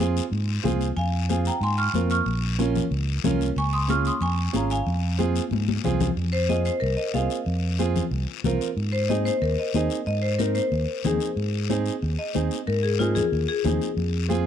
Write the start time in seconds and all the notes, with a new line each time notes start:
Already playing: F2 G#5 C6
0.00 C4 F4 G#4, high conga, short guiro
0.17 short guiro
0.32 G#2, high conga, long guiro
0.63 C2 C4 F4 G#4, high conga, low conga, short guiro
0.81 short guiro
0.97 F2 F5 G#5, high conga, long guiro
1.29 C4 F4 G#4 F5 G#5, high conga, short guiro
1.45 G5 A#5, short guiro
1.61 G#2 G#5 C6, high conga, long guiro
1.78 C#6 F6
1.94 F2 C4 F4 A#4, high conga, short guiro
2.10 C#6 F6, short guiro
2.26 A#1, high conga, long guiro
2.59 C#4 F4 A#4, high conga, short guiro
2.75 low conga, short guiro
2.91 C#2, high conga, long guiro
3.24 C2 C#4 F4 A#4, high conga, low conga, short guiro
3.41 short guiro
3.56 C#2 G#5 C#6, high conga, long guiro
3.73 C6 D#6
3.88 C#4 F4 G#4 C#6 F6, high conga, short guiro
4.05 C6 D#6, short guiro
4.21 F2 G#5 C#6, high conga, long guiro
4.53 G#1 C#4 F4 G#4 F5 A#5, high conga, short guiro
4.70 F5 G#5, short guiro
4.86 F2, high conga, long guiro
5.18 C4 F4 G#4, high conga, short guiro
5.36 short guiro
5.51 G#2, high conga, long guiro
5.68 high conga
5.84 C2 C4 F4 G#4, low conga, short guiro
6.00 low conga, short guiro
6.17 F2, high conga, long guiro
6.33 C5
6.48 C4 F4 G#4 D#5, high conga, short guiro
6.65 C5, short guiro
6.80 C2 A#4, high conga, long guiro
6.97 D#5
7.14 C2 C4 F4 G#4 F5, high conga, short guiro
7.30 short guiro
7.46 F2, high conga, long guiro
7.79 C4 F4 G#4, high conga, short guiro
7.96 low conga, short guiro
8.11 C2, high conga, long guiro
8.44 C2 C4 F4 A#4, high conga, low conga, short guiro
8.61 short guiro
8.77 G#2, high conga, long guiro
8.92 C5
9.09 C4 D#4 G#4 D#5, high conga, short guiro
9.25 C5, short guiro
9.42 D#2 A#4, high conga, long guiro
9.59 D#5
9.74 D#2 C4 D#4 G#4 D#5, high conga, short guiro
9.90 short guiro
10.06 G#2 D#5, high conga, long guiro
10.22 C5
10.39 C4 D#4 A#4, high conga, short guiro
10.55 C5, short guiro
10.72 D#2, high conga, long guiro
11.04 D#2 C4 D#4 G#4, high conga, low conga, short guiro
11.20 short guiro
11.36 G#2, high conga, long guiro
11.69 C4 D#4 G#4, high conga, short guiro
11.86 short guiro
12.02 D#2, high conga, long guiro
12.19 D#5
12.34 D#2 C4 D#4 G#4, high conga, short guiro
12.51 short guiro
12.67 G#2 A#4, high conga, long guiro
12.83 G#4
12.99 C4 D#4 F4 G#4, high conga, short guiro
13.15 G#4, low conga, short guiro
13.32 D#2, high conga, long guiro
13.48 G#4
13.64 D#2 C4 D#4 G#4, high conga, low conga, short guiro
13.82 short guiro
13.97 F2, high conga, long guiro
14.28 C4 F4 G#4, high conga, short guiro